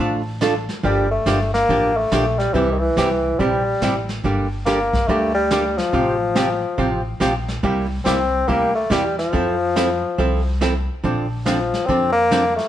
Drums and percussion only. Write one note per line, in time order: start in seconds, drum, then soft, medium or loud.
0.41 snare medium
0.41 hi-hat pedal medium
0.69 snare soft
0.84 brush sweep soft
0.84 kick soft
1.26 snare medium
1.26 hi-hat pedal medium
1.54 snare soft
1.69 brush sweep soft
1.69 kick soft
2.12 snare medium
2.12 hi-hat pedal medium
2.39 snare soft
2.54 brush sweep soft
2.54 kick soft
2.97 snare medium
2.97 hi-hat pedal medium
3.39 brush sweep medium
3.39 kick soft
3.82 snare medium
3.82 hi-hat pedal soft
4.09 snare soft
4.24 brush sweep soft
4.24 kick soft
4.66 snare medium
4.66 hi-hat pedal soft
4.93 kick medium
4.93 snare soft
5.08 brush sweep soft
5.08 kick soft
5.51 snare medium
5.51 hi-hat pedal medium
5.78 snare soft
5.93 brush sweep soft
5.93 kick soft
6.36 snare medium
6.36 hi-hat pedal medium
6.78 brush sweep soft
6.78 kick soft
7.21 snare medium
7.21 hi-hat pedal medium
7.48 snare soft
7.63 brush sweep medium
7.63 kick soft
8.06 snare medium
8.06 hi-hat pedal medium
8.49 brush sweep soft
8.49 kick soft
8.91 snare medium
8.91 hi-hat pedal medium
9.19 snare soft
9.34 brush sweep soft
9.34 kick soft
9.76 snare medium
9.76 hi-hat pedal medium
10.19 brush sweep medium
10.19 kick soft
10.61 snare medium
10.61 hi-hat pedal soft
11.04 brush sweep soft
11.04 kick soft
11.46 snare medium
11.46 hi-hat pedal medium
11.74 snare soft
11.89 brush sweep soft
11.89 kick soft
12.31 snare medium
12.31 hi-hat pedal medium
12.59 snare soft